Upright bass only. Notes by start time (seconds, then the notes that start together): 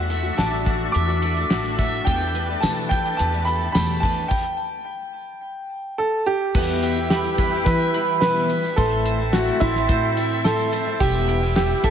Already playing: E2
0.38 A1
0.95 E2
1.52 A1
2.07 E2
2.63 E3
3.20 E2
3.75 E2
6.55 E2
7.38 E2
7.66 E3
8.78 A1
9.61 A1
9.89 A2
11.01 E1
11.83 E1